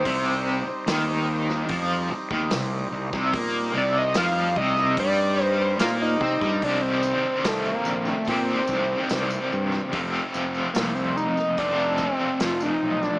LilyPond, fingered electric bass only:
\new Staff \with { instrumentName = "Fingered electric bass" } { \clef bass \time 4/4 \key c \dorian \tempo 4 = 73 c,8. r16 ees,4 f,8 r16 ees,16 c,8 c,16 c,16 | bes,8 c,8 f,8 c,8 g,4 bes,8 c16 g,16 | c,4 c,8 bes,,8 bes,8 c,8 c,8 g,8 | f,,8 f,,8 c,4 f,,4 f,,8 b,,8 | }